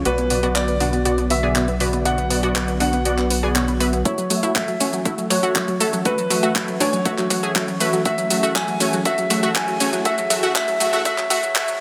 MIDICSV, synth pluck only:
0, 0, Header, 1, 2, 480
1, 0, Start_track
1, 0, Key_signature, 3, "minor"
1, 0, Tempo, 500000
1, 53, Time_signature, 4, 2, 24, 8
1, 11333, End_track
2, 0, Start_track
2, 0, Title_t, "Synth pluck"
2, 0, Program_c, 0, 84
2, 53, Note_on_c, 0, 66, 91
2, 146, Note_off_c, 0, 66, 0
2, 174, Note_on_c, 0, 59, 60
2, 266, Note_off_c, 0, 59, 0
2, 293, Note_on_c, 0, 59, 64
2, 386, Note_off_c, 0, 59, 0
2, 413, Note_on_c, 0, 66, 97
2, 505, Note_off_c, 0, 66, 0
2, 532, Note_on_c, 0, 59, 60
2, 626, Note_off_c, 0, 59, 0
2, 653, Note_on_c, 0, 59, 61
2, 745, Note_off_c, 0, 59, 0
2, 772, Note_on_c, 0, 62, 88
2, 866, Note_off_c, 0, 62, 0
2, 893, Note_on_c, 0, 59, 63
2, 985, Note_off_c, 0, 59, 0
2, 1012, Note_on_c, 0, 66, 91
2, 1106, Note_off_c, 0, 66, 0
2, 1133, Note_on_c, 0, 59, 63
2, 1225, Note_off_c, 0, 59, 0
2, 1253, Note_on_c, 0, 59, 65
2, 1346, Note_off_c, 0, 59, 0
2, 1374, Note_on_c, 0, 68, 91
2, 1466, Note_off_c, 0, 68, 0
2, 1492, Note_on_c, 0, 59, 63
2, 1586, Note_off_c, 0, 59, 0
2, 1614, Note_on_c, 0, 59, 64
2, 1706, Note_off_c, 0, 59, 0
2, 1733, Note_on_c, 0, 71, 87
2, 1827, Note_off_c, 0, 71, 0
2, 1855, Note_on_c, 0, 59, 64
2, 1946, Note_off_c, 0, 59, 0
2, 1973, Note_on_c, 0, 66, 93
2, 2067, Note_off_c, 0, 66, 0
2, 2094, Note_on_c, 0, 59, 62
2, 2186, Note_off_c, 0, 59, 0
2, 2213, Note_on_c, 0, 59, 62
2, 2306, Note_off_c, 0, 59, 0
2, 2334, Note_on_c, 0, 66, 98
2, 2426, Note_off_c, 0, 66, 0
2, 2453, Note_on_c, 0, 59, 62
2, 2546, Note_off_c, 0, 59, 0
2, 2574, Note_on_c, 0, 59, 63
2, 2666, Note_off_c, 0, 59, 0
2, 2693, Note_on_c, 0, 62, 83
2, 2786, Note_off_c, 0, 62, 0
2, 2815, Note_on_c, 0, 59, 63
2, 2906, Note_off_c, 0, 59, 0
2, 2932, Note_on_c, 0, 66, 88
2, 3026, Note_off_c, 0, 66, 0
2, 3054, Note_on_c, 0, 59, 62
2, 3146, Note_off_c, 0, 59, 0
2, 3173, Note_on_c, 0, 59, 64
2, 3266, Note_off_c, 0, 59, 0
2, 3293, Note_on_c, 0, 68, 94
2, 3385, Note_off_c, 0, 68, 0
2, 3413, Note_on_c, 0, 59, 64
2, 3506, Note_off_c, 0, 59, 0
2, 3533, Note_on_c, 0, 59, 64
2, 3625, Note_off_c, 0, 59, 0
2, 3652, Note_on_c, 0, 71, 89
2, 3746, Note_off_c, 0, 71, 0
2, 3773, Note_on_c, 0, 59, 61
2, 3865, Note_off_c, 0, 59, 0
2, 3891, Note_on_c, 0, 64, 96
2, 3985, Note_off_c, 0, 64, 0
2, 4013, Note_on_c, 0, 54, 64
2, 4105, Note_off_c, 0, 54, 0
2, 4131, Note_on_c, 0, 54, 66
2, 4226, Note_off_c, 0, 54, 0
2, 4253, Note_on_c, 0, 64, 93
2, 4345, Note_off_c, 0, 64, 0
2, 4372, Note_on_c, 0, 54, 60
2, 4466, Note_off_c, 0, 54, 0
2, 4493, Note_on_c, 0, 54, 61
2, 4585, Note_off_c, 0, 54, 0
2, 4612, Note_on_c, 0, 61, 85
2, 4706, Note_off_c, 0, 61, 0
2, 4733, Note_on_c, 0, 54, 62
2, 4825, Note_off_c, 0, 54, 0
2, 4852, Note_on_c, 0, 64, 88
2, 4946, Note_off_c, 0, 64, 0
2, 4974, Note_on_c, 0, 54, 60
2, 5065, Note_off_c, 0, 54, 0
2, 5092, Note_on_c, 0, 54, 66
2, 5186, Note_off_c, 0, 54, 0
2, 5213, Note_on_c, 0, 66, 94
2, 5305, Note_off_c, 0, 66, 0
2, 5332, Note_on_c, 0, 54, 64
2, 5426, Note_off_c, 0, 54, 0
2, 5454, Note_on_c, 0, 54, 67
2, 5546, Note_off_c, 0, 54, 0
2, 5573, Note_on_c, 0, 69, 91
2, 5666, Note_off_c, 0, 69, 0
2, 5693, Note_on_c, 0, 54, 64
2, 5785, Note_off_c, 0, 54, 0
2, 5813, Note_on_c, 0, 66, 96
2, 5906, Note_off_c, 0, 66, 0
2, 5933, Note_on_c, 0, 54, 66
2, 6025, Note_off_c, 0, 54, 0
2, 6051, Note_on_c, 0, 54, 62
2, 6146, Note_off_c, 0, 54, 0
2, 6172, Note_on_c, 0, 66, 95
2, 6265, Note_off_c, 0, 66, 0
2, 6292, Note_on_c, 0, 54, 61
2, 6386, Note_off_c, 0, 54, 0
2, 6413, Note_on_c, 0, 54, 65
2, 6505, Note_off_c, 0, 54, 0
2, 6531, Note_on_c, 0, 62, 87
2, 6625, Note_off_c, 0, 62, 0
2, 6654, Note_on_c, 0, 54, 64
2, 6745, Note_off_c, 0, 54, 0
2, 6772, Note_on_c, 0, 66, 93
2, 6866, Note_off_c, 0, 66, 0
2, 6893, Note_on_c, 0, 54, 66
2, 6985, Note_off_c, 0, 54, 0
2, 7012, Note_on_c, 0, 54, 67
2, 7106, Note_off_c, 0, 54, 0
2, 7133, Note_on_c, 0, 68, 96
2, 7225, Note_off_c, 0, 68, 0
2, 7253, Note_on_c, 0, 54, 63
2, 7346, Note_off_c, 0, 54, 0
2, 7374, Note_on_c, 0, 54, 63
2, 7466, Note_off_c, 0, 54, 0
2, 7493, Note_on_c, 0, 71, 89
2, 7587, Note_off_c, 0, 71, 0
2, 7614, Note_on_c, 0, 54, 63
2, 7706, Note_off_c, 0, 54, 0
2, 7732, Note_on_c, 0, 66, 84
2, 7826, Note_off_c, 0, 66, 0
2, 7854, Note_on_c, 0, 54, 60
2, 7946, Note_off_c, 0, 54, 0
2, 7973, Note_on_c, 0, 54, 60
2, 8066, Note_off_c, 0, 54, 0
2, 8093, Note_on_c, 0, 66, 87
2, 8185, Note_off_c, 0, 66, 0
2, 8212, Note_on_c, 0, 54, 55
2, 8306, Note_off_c, 0, 54, 0
2, 8334, Note_on_c, 0, 54, 57
2, 8426, Note_off_c, 0, 54, 0
2, 8453, Note_on_c, 0, 61, 77
2, 8546, Note_off_c, 0, 61, 0
2, 8574, Note_on_c, 0, 54, 61
2, 8666, Note_off_c, 0, 54, 0
2, 8692, Note_on_c, 0, 66, 94
2, 8786, Note_off_c, 0, 66, 0
2, 8813, Note_on_c, 0, 54, 62
2, 8905, Note_off_c, 0, 54, 0
2, 8932, Note_on_c, 0, 54, 65
2, 9026, Note_off_c, 0, 54, 0
2, 9053, Note_on_c, 0, 66, 93
2, 9145, Note_off_c, 0, 66, 0
2, 9173, Note_on_c, 0, 54, 64
2, 9266, Note_off_c, 0, 54, 0
2, 9293, Note_on_c, 0, 54, 65
2, 9385, Note_off_c, 0, 54, 0
2, 9412, Note_on_c, 0, 61, 84
2, 9506, Note_off_c, 0, 61, 0
2, 9532, Note_on_c, 0, 54, 63
2, 9625, Note_off_c, 0, 54, 0
2, 9651, Note_on_c, 0, 66, 95
2, 9745, Note_off_c, 0, 66, 0
2, 9773, Note_on_c, 0, 54, 64
2, 9865, Note_off_c, 0, 54, 0
2, 9892, Note_on_c, 0, 54, 62
2, 9986, Note_off_c, 0, 54, 0
2, 10013, Note_on_c, 0, 66, 97
2, 10105, Note_off_c, 0, 66, 0
2, 10132, Note_on_c, 0, 66, 99
2, 10226, Note_off_c, 0, 66, 0
2, 10253, Note_on_c, 0, 54, 62
2, 10345, Note_off_c, 0, 54, 0
2, 10373, Note_on_c, 0, 54, 62
2, 10466, Note_off_c, 0, 54, 0
2, 10493, Note_on_c, 0, 66, 94
2, 10585, Note_off_c, 0, 66, 0
2, 10612, Note_on_c, 0, 66, 95
2, 10706, Note_off_c, 0, 66, 0
2, 10733, Note_on_c, 0, 54, 65
2, 10825, Note_off_c, 0, 54, 0
2, 10852, Note_on_c, 0, 66, 103
2, 10946, Note_off_c, 0, 66, 0
2, 10973, Note_on_c, 0, 54, 66
2, 11065, Note_off_c, 0, 54, 0
2, 11091, Note_on_c, 0, 66, 105
2, 11185, Note_off_c, 0, 66, 0
2, 11213, Note_on_c, 0, 54, 69
2, 11305, Note_off_c, 0, 54, 0
2, 11333, End_track
0, 0, End_of_file